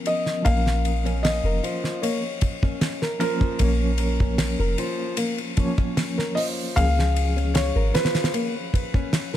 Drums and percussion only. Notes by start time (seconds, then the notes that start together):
0.06 ride
0.26 snare
0.46 kick, ride
0.67 snare
0.85 ride
1.06 ride
1.25 snare, ride
1.64 ride
1.84 snare
2.03 ride
2.41 kick, ride
2.63 kick
2.81 snare, ride
3.02 snare
3.21 ride
3.41 kick
3.59 kick, ride
3.98 ride
4.20 kick
4.38 snare, ride
4.78 ride
5.17 ride
5.38 ride
5.57 kick, ride
5.78 kick
5.97 snare, ride
6.19 snare
6.37 open hi-hat
6.77 kick, ride
6.99 snare
7.16 ride
7.38 ride
7.55 snare, ride
7.95 snare, ride
8.05 snare, ride
8.15 snare, ride
8.24 snare, ride
8.34 ride
8.74 kick, ride
8.94 kick
9.13 snare, ride